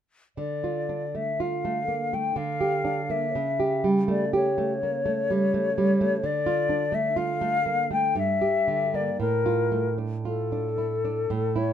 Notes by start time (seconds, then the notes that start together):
0.37 D3 D5
0.64 F4
0.89 D4
1.15 A3 E5
1.40 F4 F5
1.65 A3
1.88 A#3
2.13 A3 G5
2.36 D3 F5
2.61 G4
2.85 D4
3.10 A#3 E5
3.35 C#3
3.60 G4
3.84 G3
4.08 A3 D5
4.33 G4 C#5
4.58 A3
4.83 A#3
5.06 A3
5.30 G3
5.54 A3
5.78 G3
6.01 A3
6.24 D3 D5
6.46 F4
6.69 D4
6.92 A3 E5
7.16 F4 F5
7.41 A3
7.66 A#3
7.91 A3 G5
8.15 G2 E5
8.41 G4
8.68 D3
8.94 A#3 D5
9.20 A2 A#4
9.46 F4
9.72 A3
9.98 D4
10.25 F4 A4
10.52 D4
10.78 E4
11.05 D4
11.30 A2
11.56 E4 C#5